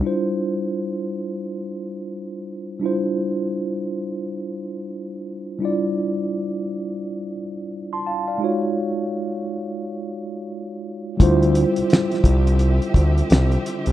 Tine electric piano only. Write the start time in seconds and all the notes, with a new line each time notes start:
0.01 G3 D4 E4
0.05 F4 C5
2.80 G3 D4 E4
2.84 F4 C5
5.59 G3 D4 E4
5.63 F4 D5
7.93 A5 C6
8.06 F5 A5
8.28 D5 F5
8.38 G#3 D#4 F4
8.43 F#4 C#5
11.17 G3 E4
11.21 F4 C5